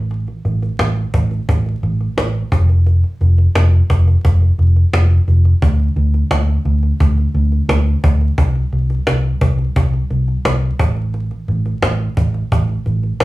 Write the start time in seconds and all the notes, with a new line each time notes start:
Already playing: A1
0.11 cajon slap
0.28 cajon slap
0.45 A1, cajon slap
0.62 cajon slap
0.79 A1, cajon slap
0.97 cajon slap
1.14 A1, cajon bass
1.31 cajon slap
1.49 A1, cajon bass
1.66 cajon slap
1.83 A1, cajon slap
2.01 cajon slap
2.17 A1, cajon slap
2.35 cajon slap
2.52 F1, cajon bass
2.69 cajon slap
2.86 cajon slap
3.04 cajon slap
3.21 F1, cajon slap
3.38 cajon slap
3.55 F1, cajon slap
3.73 cajon slap
3.90 F1, cajon bass
4.07 cajon slap
4.25 F1, cajon bass
4.42 cajon slap
4.58 F1, cajon slap
4.76 cajon slap
4.93 F1, cajon slap
5.11 cajon slap
5.27 F1, cajon slap
5.45 cajon slap
5.62 D2, cajon bass
5.79 cajon slap
5.96 D2, cajon slap
6.14 cajon slap
6.31 D2, cajon slap
6.48 cajon slap
6.65 D2, cajon slap
6.83 cajon slap
7.00 D2, cajon bass
7.17 cajon slap
7.34 D2, cajon slap
7.52 cajon slap
7.69 D2, cajon slap
7.86 cajon slap
8.04 D2, cajon bass
8.21 cajon slap
8.38 C2, cajon bass
8.55 cajon slap
8.73 C2, cajon slap
8.90 cajon slap
9.07 C2, cajon slap
9.24 cajon slap
9.41 C2, cajon bass
9.59 cajon slap
9.76 C2, cajon bass
9.94 cajon slap
10.10 C2, cajon slap
10.28 cajon slap
10.45 C2, cajon slap
10.62 cajon slap
10.79 A1, cajon bass
10.97 cajon slap
11.14 cajon slap
11.31 cajon slap
11.48 A1, cajon slap
11.66 cajon slap
11.83 A1, cajon slap
12.00 cajon slap
12.17 A1, cajon bass
12.34 cajon slap
12.52 A1, cajon bass
12.69 cajon slap
12.86 A1, cajon slap
13.03 cajon slap
13.20 A1, cajon slap